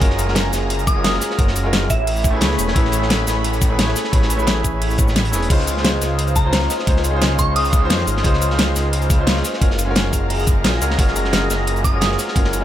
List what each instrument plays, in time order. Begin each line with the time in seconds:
Already playing: grand piano F#4 A#4, analog synth pad G#4 F5 A#5
0.00 detuned saw bass F#1, grand piano G#3 C#4 F4 F#4 A#4, kick, closed hi-hat
0.10 snare
0.19 closed hi-hat, cabasa
0.25 grand piano G#3 C#4 F4, snare
0.29 grand piano F#4 A#4
0.35 snare, closed hi-hat
0.53 detuned saw bass F#1, snare, closed hi-hat, cabasa
0.70 closed hi-hat
0.79 closed hi-hat, cabasa
0.87 synth bell D#6, kick, closed hi-hat, cabasa
0.95 grand piano G#3 C#4 F4 F#4 A#4
1.04 snare, closed hi-hat
1.14 snare
1.21 snare, closed hi-hat, open hi-hat, cabasa
1.30 snare
1.37 detuned saw bass F#1, grand piano G#3 C#4 F4 F#4 A#4, kick, closed hi-hat
1.48 snare
1.56 closed hi-hat, cabasa
1.63 grand piano G#3 C#4 F4 F#4 A#4
1.73 snare, closed hi-hat
1.90 detuned saw bass A1, analog synth pad A3 C#5 G#5 B5, synth bell E5, kick, closed hi-hat, cabasa
2.07 closed hi-hat, open hi-hat
2.16 cabasa
2.24 kick, closed hi-hat, cabasa
2.30 grand piano A3 C#4 E4
2.35 grand piano G#4 B4
2.41 detuned saw bass C#2, snare, closed hi-hat
2.50 snare
2.59 detuned saw bass E1, closed hi-hat, open hi-hat, cabasa
2.68 snare
2.74 detuned saw bass A1, grand piano A3 C#4 E4 G#4 B4, kick, closed hi-hat
2.85 snare
2.92 closed hi-hat, cabasa
2.99 grand piano A3 C#4 E4, snare
3.04 grand piano G#4 B4
3.10 snare, closed hi-hat
3.27 detuned saw bass A1, snare, closed hi-hat, cabasa
3.44 closed hi-hat
3.53 closed hi-hat, cabasa
3.62 kick, closed hi-hat, cabasa
3.69 grand piano A3 C#4 E4 G#4 B4
3.79 snare, closed hi-hat
3.88 snare
3.96 snare, closed hi-hat, open hi-hat, cabasa
4.04 snare
4.12 detuned saw bass A1, grand piano A3 C#4 E4 G#4 B4, kick, closed hi-hat
4.22 snare
4.30 closed hi-hat, cabasa
4.36 grand piano A3 C#4 E4, cabasa
4.41 grand piano G#4 B4
4.47 snare, closed hi-hat
4.64 detuned saw bass A1, kick, closed hi-hat, cabasa
4.82 closed hi-hat, open hi-hat
4.91 cabasa
4.98 kick, closed hi-hat, cabasa
5.08 snare, cabasa
5.16 snare, closed hi-hat
5.25 closed hi-hat
5.32 detuned saw bass E1, grand piano A3 C#4 E4 G#4 B4, snare, open hi-hat, cabasa
5.42 closed hi-hat
5.49 detuned saw bass C#2, grand piano G#3 C#4 D#4 F4 C5, analog synth pad C5 D#5 F5, kick, closed hi-hat, crash
5.59 snare
5.67 closed hi-hat, cabasa
5.73 grand piano G#3 C#4 D#4, snare
5.78 grand piano F4 C5
5.85 snare, closed hi-hat
6.01 detuned saw bass C#2, snare, closed hi-hat, cabasa
6.19 closed hi-hat
6.27 closed hi-hat, cabasa
6.36 synth bell A#5, kick, closed hi-hat, cabasa
6.43 grand piano G#3 C#4 D#4 F4 C5
6.53 snare, closed hi-hat
6.61 snare
6.70 snare, closed hi-hat, open hi-hat, cabasa
6.79 snare
6.86 detuned saw bass C#2, grand piano G#3 C#4 D#4 F4 C5, kick, closed hi-hat
6.96 snare
7.04 closed hi-hat, cabasa
7.10 grand piano G#3 C#4 D#4
7.15 grand piano F4 C5
7.22 snare, closed hi-hat
7.39 detuned saw bass C#2, synth bell C#6, kick, closed hi-hat, cabasa
7.56 synth bell D#6, closed hi-hat, open hi-hat
7.65 cabasa
7.73 kick, closed hi-hat, cabasa
7.79 grand piano G#3 C#4 D#4
7.84 grand piano F4 C5
7.90 detuned saw bass F2, snare, closed hi-hat
7.98 snare
8.07 detuned saw bass G#1, closed hi-hat, open hi-hat, cabasa
8.17 snare
8.23 detuned saw bass C#2, grand piano G#3 C#4 D#4 F4 C5, kick, closed hi-hat
8.33 snare
8.42 closed hi-hat, cabasa
8.48 grand piano G#3 C#4 D#4, snare
8.52 grand piano F4 C5
8.59 snare, closed hi-hat
8.76 detuned saw bass C#2, snare, closed hi-hat, cabasa
8.93 closed hi-hat
9.02 closed hi-hat, cabasa
9.10 kick, closed hi-hat, cabasa
9.18 grand piano G#3 C#4 D#4 F4 C5
9.27 snare, closed hi-hat
9.36 snare
9.44 snare, closed hi-hat, open hi-hat, cabasa
9.53 snare
9.60 detuned saw bass F#1, grand piano G#3 C#4 F4 F#4 A#4, analog synth pad G#4 A#5, kick, closed hi-hat
9.70 snare
9.79 closed hi-hat, cabasa
9.85 grand piano G#3 C#4 F4
9.89 grand piano F#4 A#4
9.95 snare, closed hi-hat
10.13 detuned saw bass F#1, kick, closed hi-hat, cabasa
10.30 closed hi-hat, open hi-hat
10.39 cabasa
10.47 kick, closed hi-hat, cabasa
10.64 detuned saw bass A#1, snare, closed hi-hat
10.72 snare
10.80 detuned saw bass C#2, grand piano G#3 C#4 F4 F#4 A#4, closed hi-hat, open hi-hat, cabasa
10.90 snare
10.97 detuned saw bass F#1, grand piano G#3 C#4 F4 F#4 A#4, kick, closed hi-hat
11.08 snare
11.16 closed hi-hat, cabasa
11.22 grand piano G#3 C#4 F4, snare
11.27 grand piano F#4 A#4
11.33 snare, closed hi-hat
11.50 detuned saw bass F#1, snare, closed hi-hat, cabasa
11.67 closed hi-hat
11.76 closed hi-hat, cabasa
11.84 synth bell D#6, kick, closed hi-hat, cabasa
11.92 grand piano G#3 C#4 F4 F#4 A#4
12.01 snare, closed hi-hat
12.11 snare
12.19 snare, closed hi-hat, open hi-hat, cabasa
12.28 snare
12.35 detuned saw bass F#1, grand piano G#3 C#4 F4 F#4 A#4, kick, closed hi-hat
12.44 snare
12.53 closed hi-hat, cabasa
12.61 grand piano G#3